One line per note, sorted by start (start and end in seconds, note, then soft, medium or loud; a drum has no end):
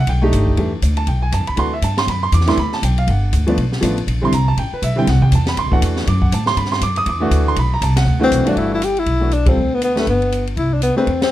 0.07 0.31 B1 medium
0.07 0.32 G5 medium
0.07 kick soft
0.07 ride medium
0.22 0.55 A3 medium
0.22 0.55 D4 medium
0.22 0.56 D#4 medium
0.22 0.56 G4 medium
0.32 0.56 G1 medium
0.32 kick soft
0.32 hi-hat pedal medium
0.32 ride medium
0.47 kick soft
0.57 0.81 E2 medium
0.57 0.70 E3 medium
0.57 0.70 A3 medium
0.57 0.71 D4 medium
0.57 0.71 G4 medium
0.57 kick soft
0.57 ride medium
0.82 1.06 D2 medium
0.82 kick soft
0.82 hi-hat pedal medium
0.82 ride medium
0.97 1.07 A5 loud
0.97 ride medium
1.07 1.31 B1 medium
1.07 1.22 G5 medium
1.07 kick soft
1.07 ride medium
1.22 1.32 G#5 medium
1.32 1.40 F#2 loud
1.32 1.47 A5 loud
1.32 kick soft
1.32 hi-hat pedal medium
1.32 ride medium
1.40 1.48 E2 medium
1.47 1.57 D2 medium
1.47 1.57 B5 medium
1.47 ride soft
1.56 1.81 D2 medium
1.56 1.70 E3 medium
1.56 1.70 A3 medium
1.56 1.71 D4 medium
1.56 1.71 F#4 medium
1.56 1.73 C6 loud
1.56 kick soft
1.56 ride medium
1.73 1.83 E5 medium
1.82 2.06 G2 medium
1.82 1.98 A5 medium
1.82 kick soft
1.82 hi-hat pedal medium
1.82 ride medium
1.97 2.08 C6 loud
1.97 snare medium
1.97 ride medium
2.07 2.31 F#2 medium
2.07 2.23 B5 medium
2.07 kick soft
2.07 ride medium
2.23 2.32 C6 loud
2.32 2.56 E2 loud
2.32 2.48 D6 loud
2.32 kick soft
2.32 hi-hat pedal medium
2.32 ride medium
2.41 snare soft
2.46 2.56 E3 medium
2.46 2.56 A3 medium
2.46 2.56 D4 medium
2.46 2.57 E4 loud
2.46 2.58 C6 loud
2.46 snare soft
2.46 ride medium
2.57 2.81 D2 medium
2.57 2.73 B5 loud
2.57 kick soft
2.57 ride medium
2.72 2.83 A5 loud
2.72 snare soft
2.82 3.07 B1 medium
2.82 2.98 G5 medium
2.82 kick soft
2.82 hi-hat pedal medium
2.82 ride medium
2.98 3.08 F5 medium
2.98 ride medium
3.07 3.31 G1 medium
3.07 3.55 F#5 medium
3.07 kick soft
3.07 ride medium
3.32 3.57 D2 medium
3.32 kick soft
3.32 hi-hat pedal medium
3.32 ride medium
3.47 3.56 F3 medium
3.47 3.56 A3 medium
3.47 3.57 B3 medium
3.47 3.57 D4 medium
3.47 ride soft
3.57 3.81 B1 medium
3.57 kick soft
3.57 ride medium
3.72 snare soft
3.81 4.06 A1 medium
3.81 3.95 F3 medium
3.81 3.95 A3 medium
3.81 3.95 B3 medium
3.81 3.96 D4 medium
3.81 kick soft
3.81 hi-hat pedal medium
3.81 ride medium
3.98 ride soft
4.07 4.31 A#1 medium
4.07 kick soft
4.07 ride medium
4.21 4.31 D3 medium
4.21 4.31 G3 medium
4.21 4.31 C4 medium
4.21 4.32 E4 medium
4.21 4.33 C6 loud
4.32 4.56 C2 medium
4.32 4.47 A#5 loud
4.32 kick soft
4.32 hi-hat pedal medium
4.32 ride medium
4.48 4.57 A5 loud
4.57 4.71 A1 medium
4.57 4.72 G5 medium
4.57 kick soft
4.57 ride medium
4.72 4.83 B4 medium
4.72 muted upright bass stroke soft
4.82 5.06 B1 medium
4.82 4.97 E5 medium
4.82 kick soft
4.82 hi-hat pedal medium
4.82 ride medium
4.96 5.05 D3 medium
4.96 5.06 G3 medium
4.96 5.06 C4 medium
4.96 5.06 E4 medium
4.96 5.08 G5 loud
5.07 5.31 C2 loud
5.07 5.23 F#5 medium
5.07 kick soft
5.07 snare soft
5.07 ride medium
5.22 5.32 G5 loud
5.22 kick medium
5.32 5.56 E2 loud
5.32 5.48 A5 medium
5.32 kick soft
5.32 hi-hat pedal medium
5.32 ride medium
5.46 5.57 B5 loud
5.46 snare medium
5.46 ride medium
5.57 5.66 D2 medium
5.57 5.72 C6 loud
5.57 kick soft
5.57 ride medium
5.66 5.74 C2 medium
5.71 5.81 A1 medium
5.71 6.04 E3 medium
5.71 6.04 A3 medium
5.71 6.05 D4 medium
5.71 6.05 F#4 medium
5.71 5.79 F#5 loud
5.71 kick medium
5.82 6.06 E2 medium
5.82 kick soft
5.82 hi-hat pedal medium
5.82 ride medium
5.96 snare medium
6.07 6.31 F#2 loud
6.07 6.22 D6 medium
6.07 kick soft
6.07 ride medium
6.22 6.32 F#5 medium
6.22 kick medium
6.32 6.56 A2 loud
6.32 6.47 A5 medium
6.32 hi-hat pedal medium
6.32 ride medium
6.46 6.57 C6 loud
6.46 snare medium
6.56 6.81 G2 medium
6.56 6.71 B5 loud
6.56 kick soft
6.56 ride medium
6.65 snare soft
6.72 6.82 C6 loud
6.72 snare medium
6.81 7.06 F#2 medium
6.81 6.97 D6 loud
6.81 kick soft
6.81 hi-hat pedal medium
6.81 ride medium
6.96 7.07 D#6 loud
6.96 ride medium
7.06 7.30 E2 loud
7.06 7.45 D6 medium
7.06 kick soft
7.06 ride medium
7.20 7.54 E3 medium
7.20 7.54 A3 medium
7.20 7.55 D4 medium
7.20 7.55 F#4 loud
7.31 7.55 D2 medium
7.31 kick soft
7.31 hi-hat pedal medium
7.31 ride medium
7.48 7.57 C6 loud
7.56 7.81 B1 medium
7.56 7.72 B5 loud
7.56 kick soft
7.56 ride medium
7.74 7.82 A#5 loud
7.81 8.05 C2 medium
7.81 7.97 A5 medium
7.81 kick soft
7.81 hi-hat pedal medium
7.81 ride medium
7.96 8.20 F#5 loud
7.96 snare medium
7.96 ride medium
8.06 8.30 D2 loud
8.06 kick soft
8.20 8.44 E3 medium
8.20 8.44 A3 medium
8.20 8.50 C4 loud
8.20 8.45 D4 medium
8.20 8.45 F#4 loud
8.31 8.45 B1 loud
8.31 kick soft
8.31 hi-hat pedal medium
8.31 ride medium
8.45 8.79 G2 medium
8.45 8.79 E3 medium
8.45 8.79 A3 medium
8.45 8.79 D4 medium
8.45 8.60 D4 medium
8.45 8.80 F#4 loud
8.45 muted upright bass stroke medium
8.45 ride medium
8.56 9.04 G1 medium
8.56 8.72 E4 medium
8.56 kick soft
8.56 ride soft
8.74 8.86 E4 medium
8.82 9.01 G4 medium
8.82 hi-hat pedal medium
8.82 ride medium
8.97 9.35 E4 loud
8.97 ride soft
9.06 9.54 B1 medium
9.06 kick soft
9.06 ride medium
9.20 9.30 E3 medium
9.20 9.30 A3 medium
9.20 9.30 D4 medium
9.20 9.31 F#4 medium
9.31 9.50 D4 medium
9.31 hi-hat pedal soft
9.31 ride medium
9.46 9.55 G3 medium
9.46 9.56 C4 medium
9.46 9.76 C4 medium
9.46 9.56 F4 medium
9.46 9.56 A4 medium
9.46 kick medium
9.46 ride medium
9.56 10.04 D2 medium
9.74 9.83 B3 medium
9.82 10.00 B3 loud
9.82 hi-hat pedal medium
9.82 ride medium
9.95 10.05 A3 medium
9.95 10.08 A3 medium
9.95 10.05 D4 medium
9.95 10.06 G4 medium
9.95 10.06 B4 medium
9.95 snare medium
9.95 ride soft
10.07 10.54 G1 medium
10.07 10.45 B3 medium
10.07 kick soft
10.07 ride medium
10.22 ride soft
10.32 hi-hat pedal medium
10.32 ride medium
10.47 ride soft
10.57 10.94 C2 medium
10.57 10.75 E4 medium
10.57 kick soft
10.57 ride soft
10.73 10.82 D4 medium
10.82 10.96 B3 loud
10.82 hi-hat pedal medium
10.82 ride medium
10.96 11.05 A3 medium
10.96 11.20 C4 medium
10.96 11.05 D4 medium
10.96 11.06 G4 medium
10.96 11.06 B4 medium
11.07 11.30 E2 medium
11.07 kick soft
11.07 ride medium
11.22 11.32 C4 loud
11.22 snare medium
11.22 ride medium